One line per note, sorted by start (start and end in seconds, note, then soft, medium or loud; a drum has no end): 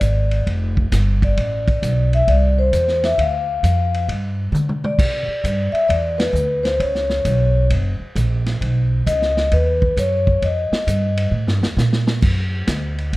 0.00 0.45 G#1 medium
0.00 0.43 D5 medium
0.00 kick soft
0.00 hi-hat pedal medium
0.00 ride medium
0.31 ride soft
0.47 0.90 F1 medium
0.47 kick soft
0.47 ride medium
0.77 kick medium
0.92 1.35 G1 medium
0.92 kick soft
0.92 snare soft
0.92 hi-hat pedal medium
0.92 ride medium
1.22 2.09 D5 medium
1.22 kick medium
1.22 ride soft
1.37 1.81 A1 medium
1.37 kick soft
1.37 ride medium
1.68 kick medium
1.68 ride soft
1.82 2.26 B1 medium
1.82 kick soft
1.82 hi-hat pedal medium
1.82 ride medium
2.13 2.28 E5 medium
2.13 ride soft
2.28 2.71 C2 medium
2.28 2.56 D5 loud
2.28 kick soft
2.28 ride medium
2.58 3.04 C5 medium
2.73 3.16 E2 medium
2.73 kick soft
2.73 hi-hat pedal medium
2.73 ride medium
2.88 snare soft
3.03 3.18 E5 medium
3.03 snare soft
3.03 ride soft
3.18 3.62 D2 medium
3.18 4.05 F5 medium
3.18 kick soft
3.18 ride medium
3.63 4.07 F2 medium
3.63 kick soft
3.63 hi-hat pedal medium
3.63 ride medium
3.94 ride soft
4.08 4.51 G2 medium
4.08 kick soft
4.08 ride medium
4.52 4.97 D3 medium
4.52 hi-hat pedal soft
4.52 mid tom soft
4.69 mid tom medium
4.84 5.78 D5 medium
4.84 mid tom medium
4.99 5.27 C3 medium
4.99 kick medium
4.99 crash medium
5.28 muted upright bass stroke soft
5.44 5.72 G2 medium
5.44 kick soft
5.44 hi-hat pedal medium
5.44 ride medium
5.72 5.89 E5 loud
5.72 muted upright bass stroke soft
5.72 ride soft
5.88 6.32 E2 medium
5.88 6.20 D5 loud
5.88 kick soft
5.88 ride medium
6.18 6.65 B4 medium
6.18 snare medium
6.18 ride medium
6.33 6.78 D2 loud
6.33 hi-hat pedal medium
6.63 6.70 C5 medium
6.63 snare soft
6.63 ride soft
6.79 7.24 C#2 medium
6.79 7.66 C#5 medium
6.79 kick soft
6.79 ride medium
6.95 snare soft
7.10 snare soft
7.25 7.69 B1 loud
7.25 kick soft
7.25 hi-hat pedal medium
7.25 ride medium
7.70 7.98 F#1 medium
7.70 kick soft
7.70 ride medium
7.99 muted upright bass stroke soft
8.16 8.59 A#1 loud
8.16 kick soft
8.16 hi-hat pedal medium
8.16 ride medium
8.46 snare soft
8.46 ride soft
8.61 9.05 B1 medium
8.61 kick soft
8.61 ride medium
9.06 9.50 C#2 loud
9.06 9.53 D#5 medium
9.06 kick soft
9.06 hi-hat pedal medium
9.06 ride medium
9.22 snare soft
9.37 snare soft
9.52 9.95 D#2 medium
9.52 9.94 B4 medium
9.52 kick soft
9.52 ride medium
9.82 kick medium
9.97 10.40 F#2 medium
9.97 10.44 C#5 medium
9.97 kick soft
9.97 hi-hat pedal medium
9.97 ride medium
10.27 kick medium
10.42 10.70 F2 medium
10.42 11.29 D#5 medium
10.42 kick soft
10.42 ride medium
10.71 muted upright bass stroke soft
10.71 snare medium
10.87 11.31 G2 medium
10.87 kick soft
10.87 hi-hat pedal medium
10.87 ride medium
11.17 ride medium
11.31 11.47 A2 medium
11.47 11.61 G2 medium
11.47 snare medium
11.62 11.76 E2 medium
11.62 snare medium
11.77 12.21 A#2 medium
11.77 snare medium
11.77 hi-hat pedal medium
11.93 snare medium
12.07 snare medium
12.22 12.66 F#2 medium
12.22 kick medium
12.22 crash medium
12.67 13.11 D2 medium
12.67 kick soft
12.67 snare medium
12.67 hi-hat pedal medium
12.67 ride medium
12.98 ride soft
13.13 13.17 C#2 medium
13.13 kick soft
13.13 ride medium